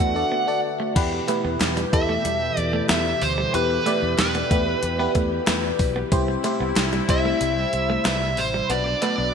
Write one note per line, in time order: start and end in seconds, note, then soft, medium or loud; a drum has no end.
0.00 0.23 E2 medium
0.00 0.93 D3 medium
0.00 0.13 A3 medium
0.00 0.93 A3 medium
0.00 0.15 D4 medium
0.00 0.15 F#4 medium
0.00 0.93 F#4 medium
0.00 0.16 A4 medium
0.00 0.97 B4 medium
0.00 0.16 D5 medium
0.00 0.97 E5 medium
0.00 0.60 F#5 medium
0.15 0.40 D4 medium
0.15 0.40 F#4 medium
0.15 0.40 A4 medium
0.15 0.40 D5 medium
0.32 0.45 B3 medium
0.47 0.84 D4 medium
0.47 0.85 F#4 medium
0.47 0.85 A4 medium
0.47 0.85 D5 medium
0.47 muted clean electric guitar stroke soft
0.80 0.93 A3 medium
0.95 1.19 E2 loud
0.95 6.08 B2 medium
0.95 6.08 E3 medium
0.95 1.20 B3 medium
0.95 1.21 E4 medium
0.95 1.21 G4 medium
0.95 6.08 G4 medium
0.95 1.21 B4 loud
0.95 kick loud
0.95 closed hi-hat medium
0.95 crash loud
1.13 muted clean electric guitar stroke soft
1.28 1.42 A3 medium
1.28 1.77 B3 medium
1.28 1.78 E4 medium
1.28 1.78 G4 medium
1.28 1.78 B4 loud
1.28 clap medium
1.28 closed hi-hat medium
1.45 1.56 E2 loud
1.45 1.58 B3 medium
1.60 1.84 E2 medium
1.60 snare loud
1.60 clap medium
1.60 closed hi-hat medium
1.60 tambourine medium
1.77 1.90 G3 medium
1.77 closed hi-hat soft
1.92 2.16 E2 loud
1.92 2.91 B3 medium
1.92 2.91 E4 medium
1.92 2.92 G4 medium
1.92 2.92 A4 medium
1.92 2.58 E5 loud
1.92 muted clean electric guitar stroke soft
1.92 kick medium
1.92 closed hi-hat medium
2.09 2.22 A3 medium
2.25 2.48 E2 loud
2.25 2.39 G3 medium
2.25 closed hi-hat medium
2.57 2.81 E2 loud
2.57 2.86 D5 loud
2.57 muted clean electric guitar stroke soft
2.57 closed hi-hat medium
2.73 2.87 A3 medium
2.89 3.13 E2 medium
2.89 3.03 B3 medium
2.89 3.23 E5 loud
2.89 snare loud
2.89 clap medium
2.89 closed hi-hat loud
2.89 tambourine medium
3.22 3.45 D2 medium
3.22 3.54 C5 medium
3.22 muted clean electric guitar stroke soft
3.22 open hi-hat medium
3.38 3.51 G3 medium
3.53 3.77 E2 loud
3.53 3.78 B3 medium
3.53 3.67 B3 medium
3.53 3.79 E4 medium
3.53 3.79 G4 medium
3.53 3.79 B4 medium
3.53 4.18 B4 medium
3.53 closed hi-hat medium
3.70 muted clean electric guitar stroke soft
3.86 4.00 A3 medium
3.86 4.36 B3 medium
3.86 4.36 E4 medium
3.86 4.36 G4 medium
3.86 4.36 D5 medium
3.86 clap medium
3.86 closed hi-hat medium
4.03 4.14 E2 medium
4.18 4.42 E2 loud
4.18 5.12 B4 medium
4.18 muted clean electric guitar stroke soft
4.18 snare loud
4.18 clap medium
4.18 closed hi-hat medium
4.18 tambourine medium
4.35 4.48 B3 medium
4.35 closed hi-hat soft
4.50 4.74 E2 loud
4.50 4.64 A3 medium
4.50 4.88 B3 medium
4.50 4.88 E4 medium
4.50 4.88 G4 medium
4.50 4.88 B4 medium
4.50 kick loud
4.50 closed hi-hat medium
4.83 5.06 E2 loud
4.83 muted clean electric guitar stroke soft
4.83 closed hi-hat medium
4.99 5.85 B3 medium
4.99 5.13 B3 medium
4.99 5.86 E4 medium
4.99 5.86 G4 medium
4.99 5.86 B4 loud
5.15 5.39 E2 loud
5.15 5.29 A3 medium
5.15 kick medium
5.15 closed hi-hat medium
5.47 5.71 E2 loud
5.47 5.61 A3 medium
5.47 snare loud
5.47 clap medium
5.47 closed hi-hat loud
5.47 tambourine medium
5.64 muted clean electric guitar stroke soft
5.79 6.03 B1 medium
5.79 kick loud
5.79 open hi-hat medium
5.96 6.09 B3 medium
6.12 6.35 C2 loud
6.12 8.68 C3 medium
6.12 8.68 G3 medium
6.12 6.37 C4 medium
6.12 6.37 E4 medium
6.12 8.68 E4 medium
6.12 6.37 G4 medium
6.12 6.37 C5 loud
6.12 kick loud
6.12 closed hi-hat medium
6.28 muted clean electric guitar stroke soft
6.44 6.58 A3 medium
6.44 6.94 C4 medium
6.44 6.94 E4 medium
6.44 6.94 G4 medium
6.44 6.94 C5 medium
6.44 clap medium
6.44 closed hi-hat medium
6.60 6.72 C2 medium
6.60 6.74 B3 medium
6.76 7.00 C2 medium
6.76 snare loud
6.76 clap medium
6.76 closed hi-hat medium
6.76 tambourine medium
6.93 7.06 G3 medium
6.93 closed hi-hat soft
7.08 7.32 C2 medium
7.08 8.07 C4 medium
7.08 8.08 E4 medium
7.08 8.08 G4 medium
7.08 8.08 C5 medium
7.08 8.05 E5 loud
7.08 muted clean electric guitar stroke soft
7.08 kick loud
7.08 closed hi-hat medium
7.25 7.39 A3 medium
7.41 7.64 C2 loud
7.41 7.55 G3 medium
7.41 closed hi-hat medium
7.73 7.97 C2 medium
7.73 muted clean electric guitar stroke soft
7.73 closed hi-hat medium
7.90 8.03 A3 medium
8.05 8.38 C2 medium
8.05 8.19 B3 medium
8.05 8.39 E5 medium
8.05 snare loud
8.05 clap medium
8.05 closed hi-hat loud
8.05 tambourine medium
8.37 8.61 A1 medium
8.37 8.71 C5 medium
8.37 muted clean electric guitar stroke soft
8.37 open hi-hat medium
8.54 8.68 G3 medium
8.69 8.93 B1 loud
8.69 9.34 F#3 medium
8.69 8.94 B3 medium
8.69 8.84 B3 medium
8.69 9.34 B3 medium
8.69 8.95 D4 medium
8.69 9.34 D4 medium
8.69 8.95 F#4 medium
8.69 8.95 B4 medium
8.69 9.02 D5 medium
8.69 closed hi-hat medium
8.86 muted clean electric guitar stroke soft
9.01 9.16 A3 medium
9.01 9.34 B3 medium
9.01 9.34 D4 medium
9.01 9.34 F#4 medium
9.01 9.34 B4 medium
9.01 9.34 D5 loud
9.01 clap medium
9.01 closed hi-hat medium
9.18 9.30 B1 medium